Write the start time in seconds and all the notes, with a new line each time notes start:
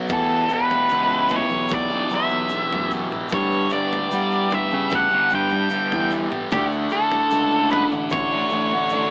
Already playing: B3
0.08 E2 B2 E3 E4 G4, kick, floor tom, shaker
0.13 A4
0.29 shaker
0.49 E2 B2 E3, shaker
0.54 B4
0.70 floor tom, shaker
0.89 C#2 E2 B2 E3, shaker
1.08 shaker
1.29 E2 B2 E3, floor tom, shaker
1.36 C#5
1.50 B1, muted distorted electric guitar stroke, shaker
1.68 kick, floor tom, shaker
1.74 D5
1.89 B2 E3, shaker
2.10 B1 E2 B2 E3, shaker
2.15 E5
2.29 muted distorted electric guitar stroke, shaker
2.49 E2 B2, shaker
2.53 E3
2.73 F#2, floor tom
2.90 E2 B2 E3, shaker
3.11 B2 E3, mid tom, shaker
3.29 G2 G4, kick, floor tom, shaker
3.33 D3 G3 C#5
3.52 shaker
3.70 G2 D3 D5, shaker
3.74 G3
3.91 floor tom, shaker
4.11 G2 D3 G3, shaker
4.31 shaker
4.50 G2 D3 G3, floor tom, shaker
4.55 E5
4.70 C#3, muted distorted electric guitar stroke, shaker
4.90 kick, floor tom, shaker
4.95 F#5
5.10 D3 G3, shaker
5.30 G2 D3 G3, shaker
5.35 G5
5.49 muted distorted electric guitar stroke, shaker
5.69 G2 D3 G3, shaker
5.92 E2, floor tom
6.10 G2 D3, shaker
6.14 G3
6.30 D3 G3, mid tom, shaker
6.51 D2 D3 A3 D4 E4 G4 F#5, kick, floor tom, shaker
6.72 shaker
6.90 D3 A3 D4 A4, shaker
7.11 floor tom, shaker
7.30 C#2 D3 A3 D4, shaker
7.51 shaker
7.70 D3 A3 D4 B4, floor tom, shaker
7.91 A1, muted distorted electric guitar stroke, shaker
8.10 C#5, kick, floor tom, shaker
8.31 A3 D4, shaker
8.50 A1 D3 A3, shaker
8.54 D4
8.71 muted distorted electric guitar stroke, shaker
8.89 D3, shaker
8.93 A3 D4